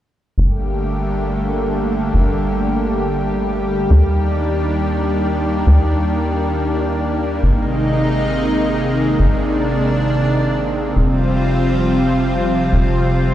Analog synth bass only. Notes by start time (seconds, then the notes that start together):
0.38 G1
2.14 G1
3.90 D#2
5.67 D#2
7.43 G#1
9.20 G#1
10.96 F1
12.73 F1